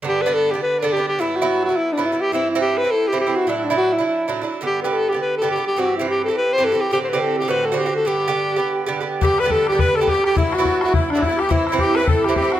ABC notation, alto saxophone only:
X:1
M:4/4
L:1/16
Q:"Swing" 1/4=209
K:G
V:1 name="Alto saxophone"
G2 B2 A2 G2 B2 A2 G2 G2 | E2 F4 F2 E2 D2 E2 G2 | E2 E2 G2 B2 A2 G2 G2 F2 | E2 D2 F2 E2 E4 z4 |
G2 B3/2 B/2 A2 G2 B2 A2 G2 G2 | F2 E2 G2 A2 B2 c2 A2 G2 | G3/2 c/2 B2 A2 G2 B2 A2 G2 A2 | G12 z4 |
G2 B2 A2 G2 B2 A2 G2 G2 | E2 F4 F2 E2 D2 E2 G2 | E2 E2 G2 B2 A2 G2 G2 F2 |]